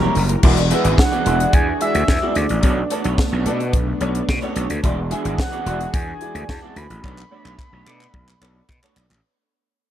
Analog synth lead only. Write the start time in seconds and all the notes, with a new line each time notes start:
Already playing: A#5
0.99 F#5
1.54 G#5
1.82 E5
2.36 D5
5.41 F#5
5.95 G#5
6.50 A5
6.77 B5